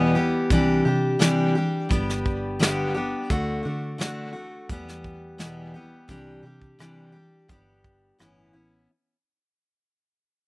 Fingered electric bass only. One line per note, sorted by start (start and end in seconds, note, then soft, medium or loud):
0.00 0.33 E2 medium
0.51 0.81 C2 medium
0.85 1.16 C3 medium
1.91 3.14 G1 medium
3.31 3.61 D2 medium
3.65 3.96 D3 medium
4.70 5.93 E2 medium
6.09 6.40 C2 medium
6.43 6.74 C3 medium
7.50 8.11 G1 loud
8.20 8.51 G1 medium
8.55 8.86 A1 medium